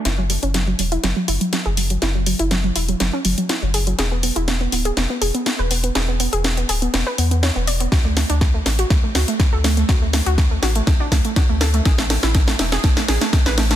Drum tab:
HH |x-oxx-oxx-oxx-ox|x-oxx-oxx-oxx-ox|x-oxx-oxx-oxx-ox|x-oxxxoxx-oxx-ox|
SD |o---o---o---o---|o---o---o---o---|o---o---o---o---|o---o---o---o---|
BD |----------------|----------------|----------------|----------------|

HH |x-oxx-oxx-oxx-ox|x-oxx-oxx-oxx-ox|x-oxx-oxx-oxx-ox|
SD |o-o-o-o-o-o-o-o-|o-o-o-o-o-o-o-o-|oooooooooooooooo|
BD |o---o---o---o---|o---o---o-o-o---|o---o---o---o---|